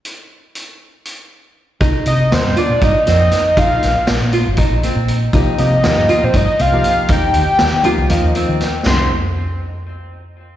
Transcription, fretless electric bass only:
\new Staff \with { instrumentName = "Fretless electric bass" } { \clef bass \time 7/8 \key c \minor \tempo 4 = 119 r2. r8 | c,16 r16 c8 ees,16 g,16 r16 bes,16 g,16 r16 f,8 r8 | bes,,8 bes,,16 r16 bes,,16 bes,8 g,,16 bes,,16 bes,,16 r16 bes,8. | c,16 r16 c8 ees,16 g,16 r16 bes,16 g,16 r16 c,8 r8 |
ees,8 ees,16 r16 ees,16 ees8 c,16 ees,16 ees,16 r16 ees8. | c,8 r2. | }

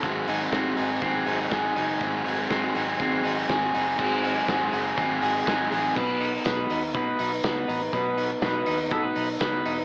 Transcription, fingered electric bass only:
\new Staff \with { instrumentName = "Fingered electric bass" } { \clef bass \time 4/4 \key gis \phrygian \tempo 4 = 122 gis,,8 gis,,8 gis,,8 gis,,8 gis,,8 gis,,8 gis,,8 fis,,8 | gis,,8 gis,,8 gis,,8 gis,,8 gis,,8 gis,,8 gis,,8 fis,,8 | gis,,4 gis,,8 fis,,8 gis,,8 gis,,8 gis,,8 a,,8 | b,,4 b,,8 dis,8 b,,8 b,,8 cis,8 a,,8 |
b,,4 b,,8 dis,8 b,,8 b,,8 cis,8 e,,8 | }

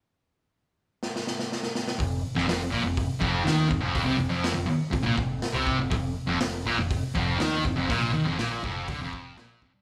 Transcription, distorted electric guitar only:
\new Staff \with { instrumentName = "Distorted electric guitar" } { \clef bass \time 4/4 \key c \mixolydian \tempo 4 = 122 r1 | f,8 r16 f,16 f,8 bes,16 f,8 r16 f,8 ees8 f,16 f,16~ | f,16 c16 f,16 f,8 f,16 r8 f,16 bes,16 f,8 r16 c8 f,16 | f,8 r16 f,16 f,8 bes,16 f,8 r16 f,8 ees8 f,16 f,16 |
bes,8 ees16 f,16 bes,8 f,8 d16 f,8. bes,8 f,16 g,16 | }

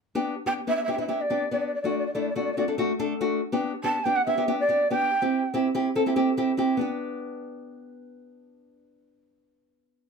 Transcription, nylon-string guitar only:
\new Staff \with { instrumentName = "Nylon-string guitar" } { \time 4/4 \key g \major \tempo 4 = 142 r16 <b d' g'>8 r16 <b d' g'>16 r16 <b d' g'>16 r16 <b d' g'>16 <b d' e'>16 <b d' g'>16 r16 <b d' g'>16 r16 <b d' g'>8 | r16 <a d' fis'>8 r16 <a d' e'>16 r16 <a d' fis'>16 r16 <a d' fis'>16 <a d' a'>16 <a d' fis'>16 r16 <a d' a'>16 r16 <a d' fis'>8 | r16 <b d' g'>8 r16 <b d' g'>16 r16 <b d' g'>16 r16 <b d' g'>16 <b d' g'>16 <b d' g'>16 r16 <b d' g'>16 r16 <b d' g'>8 | r16 <c' e' g'>8 r16 <c' e' g'>16 r16 <c' e' g'>16 r16 <c' e' a'>16 <c' e' g'>16 <c' e' g'>16 r16 <c' e' g'>16 r16 <c' e' g'>8 |
<b d' g'>1~ | <b d' g'>1 | }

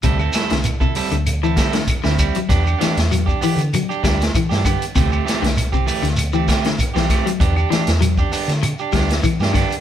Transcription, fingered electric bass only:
\new Staff \with { instrumentName = "Fingered electric bass" } { \clef bass \time 4/4 \key d \mixolydian \tempo 4 = 98 d,8 r16 c,4 d,8. d8 r16 d,8 r16 | e,8 r16 e,8. r16 d8 r16 d,8 r16 g,8 r16 | d,8 r16 c,4 d,8. d8 r16 b,,8 r16 | e,8 r16 e,8. r16 d8 r16 d,8 r16 g,8 r16 | }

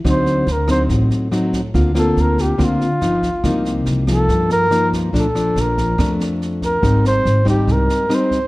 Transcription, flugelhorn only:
\new Staff \with { instrumentName = "Flugelhorn" } { \time 4/4 \key bes \major \tempo 4 = 142 c''4 bes'8 c''8 r2 | r8 a'8 bes'8 g'8 f'2~ | f'4 r8 a'4 bes'4 f'8 | a'4 bes'4. r4 bes'8~ |
bes'8 c''4 g'8 bes'4 c''4 | }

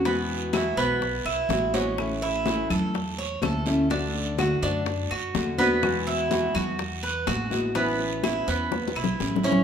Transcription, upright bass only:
\new Staff \with { instrumentName = "Upright bass" } { \clef bass \time 4/4 \key a \major \tempo 4 = 125 e,4. b,,4 b,,8 a,,4~ | a,,4. e,4. d,4~ | d,4. fis,4 fis,8 e,4~ | e,4. e,4. a,,4~ |
a,,4. e,4 b,,8 a,,4 | }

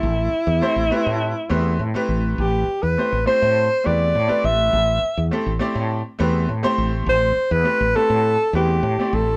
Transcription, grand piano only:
\new Staff \with { instrumentName = "Grand piano" } { \time 4/4 \key a \minor \tempo 4 = 102 <a c' e' g' a'>8 r8 <a c' e' g' c''>16 r16 <a c' e' g' b'>8. r16 <a c' e' g' b'>8 r16 <a c' e' g' b'>8.~ | <a c' e' g' b'>8 r8 <a c' e' g' c''>16 r16 <a c' e' g' c''>8. r16 <a c' e' g' b'>8 r16 <a c' e' g' b'>8.~ | <a c' e' g' b'>8 r8 <a c' e' g' a'>16 r16 <a c' e' g' d''>8. r16 <a c' e' g' b'>8 r16 <a c' e' g' c''>8.~ | <a c' e' g' c''>8 r8 <a c' e' g' b'>16 r16 <a c' e' g' b'>8. r16 <a c' e' g' b'>8 r16 <a c' e' g' d''>8. | }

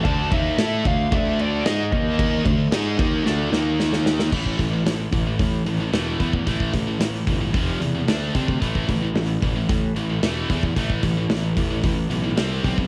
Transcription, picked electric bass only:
\new Staff \with { instrumentName = "Picked electric bass" } { \clef bass \time 4/4 \key d \dorian \tempo 4 = 112 d,8 dis,8 a,8 d,8 d,4 gis,8 dis,8~ | dis,8 d,8 gis,8 dis,8 d,8 dis,4. | a,,8 a,,8 a,,8 a,,8 a,8 a,,8 e,,8 e,8 | a,,8 a,,8 a,,8 g,,8 f,,8 e,8 d,8 c8 |
a,,8 a,,8 a,,8 a,,8 a,8 a,,8 e,,8 e,8 | a,,8 a,,8 a,,8 a,,8 a,,8 b,,8 c,8 b,,8 | }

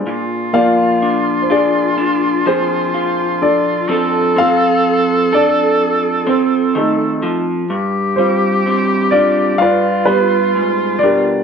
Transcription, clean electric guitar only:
\new Staff \with { instrumentName = "Clean electric guitar" } { \clef bass \time 4/4 \key bes \mixolydian \tempo 4 = 63 << { r4 d'8 f'8 d'4 f'4 | <c' a'>4. a'2~ a'8 | r4 c'8 f'8 r2 | } \\ { bes,8 f2 f4. | f8 c'2 c'8 ees8 f8 | g,8 g4. g,8 g8 aes,8 b,8 | } >> }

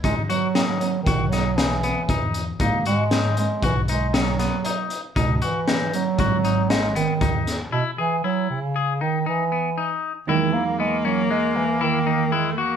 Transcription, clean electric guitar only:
\new Staff \with { instrumentName = "Clean electric guitar" } { \time 5/4 \key e \lydian \tempo 4 = 117 dis'8 fis'8 dis'4 fis'8 dis'8 dis'8 b8 dis'4 | dis'8 fis'8 dis'4 fis'8 dis'8 dis'8 b8 dis'4 | dis'8 fis'8 dis'4 fis'8 dis'8 dis'8 b8 dis'4 | e'8 gis'8 e'4 gis'8 dis'8 dis'8 b8 dis'4 |
e'4 b8 cis'8 gis4 e'8 dis'8 e'8 fis'8 | }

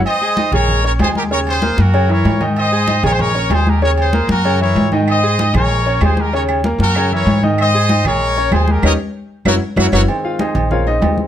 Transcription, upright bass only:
\new Staff \with { instrumentName = "Upright bass" } { \clef bass \time 4/4 \key aes \major \tempo 4 = 192 r4. bes,,4. ees,4~ | ees,4. ges,4. aes,4~ | aes,4. bes,,4. ees,4~ | ees,4. ges,4. aes,4~ |
aes,4. bes,,4. ees,4~ | ees,4. ges,4. aes,4~ | aes,4. bes,,4. ees,4 | ees,8 r4. ges,,8 r8 ges,,8 ges,,8 |
r4. bes,,4. ees,4 | }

